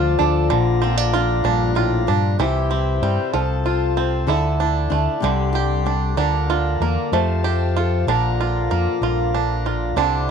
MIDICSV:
0, 0, Header, 1, 5, 480
1, 0, Start_track
1, 0, Tempo, 630915
1, 387, Time_signature, 6, 3, 24, 8
1, 7840, End_track
2, 0, Start_track
2, 0, Title_t, "Harmonium"
2, 0, Program_c, 0, 20
2, 0, Note_on_c, 0, 65, 70
2, 0, Note_on_c, 0, 74, 64
2, 0, Note_on_c, 0, 81, 72
2, 369, Note_on_c, 0, 82, 75
2, 371, Note_off_c, 0, 81, 0
2, 1794, Note_off_c, 0, 65, 0
2, 1796, Note_off_c, 0, 74, 0
2, 1801, Note_off_c, 0, 82, 0
2, 1817, Note_on_c, 0, 72, 53
2, 1818, Note_on_c, 0, 64, 55
2, 1819, Note_on_c, 0, 79, 66
2, 2526, Note_on_c, 0, 81, 60
2, 2531, Note_on_c, 0, 65, 55
2, 2533, Note_off_c, 0, 64, 0
2, 2533, Note_off_c, 0, 79, 0
2, 3245, Note_off_c, 0, 72, 0
2, 3245, Note_on_c, 0, 64, 56
2, 3245, Note_on_c, 0, 74, 52
2, 3249, Note_off_c, 0, 65, 0
2, 3960, Note_off_c, 0, 81, 0
2, 3964, Note_on_c, 0, 67, 58
2, 3966, Note_on_c, 0, 84, 67
2, 3967, Note_off_c, 0, 64, 0
2, 4687, Note_off_c, 0, 67, 0
2, 4688, Note_off_c, 0, 84, 0
2, 4688, Note_on_c, 0, 65, 56
2, 4690, Note_on_c, 0, 82, 64
2, 5394, Note_off_c, 0, 74, 0
2, 5409, Note_off_c, 0, 65, 0
2, 5410, Note_off_c, 0, 82, 0
2, 5424, Note_on_c, 0, 67, 57
2, 5426, Note_on_c, 0, 81, 64
2, 5432, Note_on_c, 0, 77, 53
2, 6138, Note_off_c, 0, 67, 0
2, 6139, Note_off_c, 0, 81, 0
2, 6142, Note_off_c, 0, 77, 0
2, 6144, Note_on_c, 0, 65, 60
2, 6146, Note_on_c, 0, 82, 68
2, 6147, Note_on_c, 0, 74, 59
2, 7558, Note_off_c, 0, 74, 0
2, 7570, Note_on_c, 0, 74, 50
2, 7573, Note_off_c, 0, 65, 0
2, 7573, Note_on_c, 0, 64, 60
2, 7573, Note_on_c, 0, 84, 64
2, 7574, Note_off_c, 0, 82, 0
2, 7840, Note_off_c, 0, 64, 0
2, 7840, Note_off_c, 0, 74, 0
2, 7840, Note_off_c, 0, 84, 0
2, 7840, End_track
3, 0, Start_track
3, 0, Title_t, "Five-string banjo"
3, 0, Program_c, 1, 105
3, 0, Note_on_c, 1, 50, 87
3, 0, Note_on_c, 1, 62, 61
3, 0, Note_on_c, 1, 65, 62
3, 133, Note_off_c, 1, 62, 0
3, 142, Note_on_c, 1, 62, 62
3, 372, Note_off_c, 1, 50, 0
3, 381, Note_on_c, 1, 50, 75
3, 432, Note_off_c, 1, 62, 0
3, 435, Note_off_c, 1, 65, 0
3, 621, Note_on_c, 1, 60, 57
3, 741, Note_off_c, 1, 60, 0
3, 741, Note_on_c, 1, 62, 51
3, 864, Note_on_c, 1, 65, 67
3, 1092, Note_off_c, 1, 62, 0
3, 1101, Note_on_c, 1, 62, 60
3, 1332, Note_off_c, 1, 65, 0
3, 1341, Note_on_c, 1, 65, 59
3, 1574, Note_off_c, 1, 62, 0
3, 1583, Note_on_c, 1, 62, 53
3, 1820, Note_off_c, 1, 50, 0
3, 1823, Note_on_c, 1, 52, 64
3, 1826, Note_off_c, 1, 62, 0
3, 1829, Note_on_c, 1, 64, 54
3, 1870, Note_off_c, 1, 65, 0
3, 2059, Note_on_c, 1, 60, 50
3, 2304, Note_on_c, 1, 55, 53
3, 2534, Note_off_c, 1, 52, 0
3, 2537, Note_on_c, 1, 53, 67
3, 2589, Note_off_c, 1, 60, 0
3, 2592, Note_off_c, 1, 55, 0
3, 2594, Note_off_c, 1, 64, 0
3, 2782, Note_on_c, 1, 65, 49
3, 3020, Note_on_c, 1, 60, 46
3, 3256, Note_off_c, 1, 53, 0
3, 3259, Note_on_c, 1, 50, 65
3, 3262, Note_off_c, 1, 65, 0
3, 3263, Note_off_c, 1, 60, 0
3, 3266, Note_on_c, 1, 64, 57
3, 3500, Note_on_c, 1, 62, 52
3, 3741, Note_on_c, 1, 57, 50
3, 3977, Note_off_c, 1, 50, 0
3, 3986, Note_on_c, 1, 50, 69
3, 4029, Note_off_c, 1, 62, 0
3, 4030, Note_off_c, 1, 57, 0
3, 4033, Note_off_c, 1, 64, 0
3, 4223, Note_on_c, 1, 67, 46
3, 4462, Note_on_c, 1, 62, 46
3, 4688, Note_off_c, 1, 50, 0
3, 4692, Note_off_c, 1, 62, 0
3, 4697, Note_on_c, 1, 50, 64
3, 4702, Note_on_c, 1, 62, 57
3, 4704, Note_off_c, 1, 67, 0
3, 4944, Note_on_c, 1, 65, 56
3, 5186, Note_on_c, 1, 58, 58
3, 5421, Note_off_c, 1, 50, 0
3, 5426, Note_on_c, 1, 57, 70
3, 5471, Note_off_c, 1, 62, 0
3, 5472, Note_off_c, 1, 65, 0
3, 5473, Note_off_c, 1, 58, 0
3, 5662, Note_on_c, 1, 67, 52
3, 5907, Note_on_c, 1, 65, 49
3, 6144, Note_off_c, 1, 67, 0
3, 6146, Note_off_c, 1, 57, 0
3, 6149, Note_on_c, 1, 50, 71
3, 6153, Note_off_c, 1, 65, 0
3, 6156, Note_on_c, 1, 62, 56
3, 6395, Note_on_c, 1, 65, 54
3, 6627, Note_on_c, 1, 58, 52
3, 6861, Note_off_c, 1, 65, 0
3, 6870, Note_on_c, 1, 65, 52
3, 7100, Note_off_c, 1, 62, 0
3, 7110, Note_on_c, 1, 62, 46
3, 7341, Note_off_c, 1, 65, 0
3, 7350, Note_on_c, 1, 65, 47
3, 7576, Note_off_c, 1, 50, 0
3, 7581, Note_off_c, 1, 62, 0
3, 7585, Note_on_c, 1, 50, 70
3, 7590, Note_on_c, 1, 62, 58
3, 7636, Note_off_c, 1, 58, 0
3, 7637, Note_off_c, 1, 65, 0
3, 7840, Note_off_c, 1, 50, 0
3, 7840, Note_off_c, 1, 62, 0
3, 7840, End_track
4, 0, Start_track
4, 0, Title_t, "Steel-string acoustic guitar"
4, 0, Program_c, 2, 25
4, 0, Note_on_c, 2, 50, 70
4, 0, Note_on_c, 2, 53, 64
4, 0, Note_on_c, 2, 62, 62
4, 0, Note_on_c, 2, 65, 59
4, 159, Note_on_c, 2, 69, 56
4, 360, Note_off_c, 2, 50, 0
4, 364, Note_off_c, 2, 69, 0
4, 365, Note_off_c, 2, 65, 0
4, 369, Note_off_c, 2, 62, 0
4, 389, Note_on_c, 2, 46, 81
4, 636, Note_on_c, 2, 65, 64
4, 871, Note_on_c, 2, 62, 63
4, 1092, Note_off_c, 2, 46, 0
4, 1095, Note_on_c, 2, 43, 62
4, 1329, Note_off_c, 2, 43, 0
4, 1332, Note_on_c, 2, 45, 72
4, 1572, Note_off_c, 2, 45, 0
4, 1575, Note_on_c, 2, 46, 63
4, 1798, Note_off_c, 2, 62, 0
4, 1800, Note_off_c, 2, 65, 0
4, 1817, Note_on_c, 2, 48, 61
4, 1820, Note_off_c, 2, 46, 0
4, 1821, Note_on_c, 2, 67, 58
4, 1828, Note_off_c, 2, 53, 0
4, 2061, Note_on_c, 2, 64, 52
4, 2303, Note_on_c, 2, 60, 51
4, 2513, Note_off_c, 2, 64, 0
4, 2514, Note_off_c, 2, 60, 0
4, 2528, Note_off_c, 2, 48, 0
4, 2537, Note_on_c, 2, 48, 56
4, 2538, Note_off_c, 2, 67, 0
4, 2541, Note_on_c, 2, 69, 57
4, 2781, Note_on_c, 2, 65, 54
4, 3019, Note_on_c, 2, 60, 47
4, 3232, Note_off_c, 2, 60, 0
4, 3233, Note_off_c, 2, 65, 0
4, 3233, Note_off_c, 2, 69, 0
4, 3244, Note_off_c, 2, 48, 0
4, 3247, Note_on_c, 2, 50, 62
4, 3252, Note_on_c, 2, 69, 60
4, 3501, Note_on_c, 2, 64, 46
4, 3727, Note_on_c, 2, 62, 55
4, 3946, Note_off_c, 2, 50, 0
4, 3947, Note_off_c, 2, 62, 0
4, 3949, Note_off_c, 2, 69, 0
4, 3953, Note_off_c, 2, 64, 0
4, 3959, Note_on_c, 2, 48, 60
4, 3971, Note_on_c, 2, 55, 54
4, 3976, Note_on_c, 2, 62, 55
4, 3979, Note_on_c, 2, 67, 55
4, 4195, Note_off_c, 2, 67, 0
4, 4205, Note_on_c, 2, 67, 64
4, 4447, Note_off_c, 2, 62, 0
4, 4456, Note_on_c, 2, 62, 53
4, 4669, Note_off_c, 2, 55, 0
4, 4671, Note_off_c, 2, 62, 0
4, 4690, Note_off_c, 2, 48, 0
4, 4693, Note_on_c, 2, 50, 61
4, 4694, Note_off_c, 2, 67, 0
4, 4698, Note_on_c, 2, 70, 55
4, 4940, Note_on_c, 2, 62, 50
4, 5187, Note_on_c, 2, 58, 53
4, 5390, Note_off_c, 2, 50, 0
4, 5393, Note_off_c, 2, 70, 0
4, 5421, Note_on_c, 2, 53, 66
4, 5423, Note_off_c, 2, 62, 0
4, 5425, Note_on_c, 2, 72, 60
4, 5426, Note_off_c, 2, 58, 0
4, 5658, Note_off_c, 2, 72, 0
4, 5667, Note_on_c, 2, 72, 56
4, 5915, Note_on_c, 2, 69, 54
4, 6118, Note_off_c, 2, 72, 0
4, 6122, Note_off_c, 2, 69, 0
4, 6142, Note_on_c, 2, 46, 63
4, 6150, Note_on_c, 2, 70, 64
4, 6395, Note_on_c, 2, 65, 54
4, 6625, Note_on_c, 2, 62, 53
4, 6858, Note_off_c, 2, 46, 0
4, 6861, Note_on_c, 2, 43, 57
4, 7104, Note_off_c, 2, 43, 0
4, 7347, Note_on_c, 2, 46, 58
4, 7558, Note_off_c, 2, 62, 0
4, 7561, Note_off_c, 2, 70, 0
4, 7564, Note_off_c, 2, 65, 0
4, 7580, Note_on_c, 2, 48, 61
4, 7583, Note_on_c, 2, 67, 59
4, 7586, Note_off_c, 2, 53, 0
4, 7587, Note_off_c, 2, 46, 0
4, 7840, Note_off_c, 2, 48, 0
4, 7840, Note_off_c, 2, 67, 0
4, 7840, End_track
5, 0, Start_track
5, 0, Title_t, "Fingered electric bass"
5, 0, Program_c, 3, 33
5, 0, Note_on_c, 3, 38, 103
5, 125, Note_off_c, 3, 38, 0
5, 149, Note_on_c, 3, 38, 84
5, 376, Note_off_c, 3, 38, 0
5, 383, Note_on_c, 3, 34, 106
5, 1073, Note_off_c, 3, 34, 0
5, 1099, Note_on_c, 3, 34, 92
5, 1557, Note_off_c, 3, 34, 0
5, 1584, Note_on_c, 3, 43, 89
5, 1808, Note_off_c, 3, 43, 0
5, 1812, Note_on_c, 3, 36, 84
5, 2273, Note_off_c, 3, 36, 0
5, 2293, Note_on_c, 3, 43, 74
5, 2412, Note_off_c, 3, 43, 0
5, 2537, Note_on_c, 3, 36, 82
5, 3229, Note_off_c, 3, 36, 0
5, 3252, Note_on_c, 3, 38, 80
5, 3713, Note_off_c, 3, 38, 0
5, 3737, Note_on_c, 3, 38, 77
5, 3854, Note_off_c, 3, 38, 0
5, 3977, Note_on_c, 3, 36, 83
5, 4670, Note_off_c, 3, 36, 0
5, 4697, Note_on_c, 3, 38, 83
5, 5157, Note_off_c, 3, 38, 0
5, 5176, Note_on_c, 3, 40, 79
5, 5294, Note_off_c, 3, 40, 0
5, 5416, Note_on_c, 3, 41, 82
5, 6111, Note_off_c, 3, 41, 0
5, 6136, Note_on_c, 3, 34, 85
5, 6597, Note_off_c, 3, 34, 0
5, 6626, Note_on_c, 3, 41, 70
5, 6740, Note_off_c, 3, 41, 0
5, 6856, Note_on_c, 3, 34, 77
5, 7552, Note_off_c, 3, 34, 0
5, 7578, Note_on_c, 3, 36, 84
5, 7840, Note_off_c, 3, 36, 0
5, 7840, End_track
0, 0, End_of_file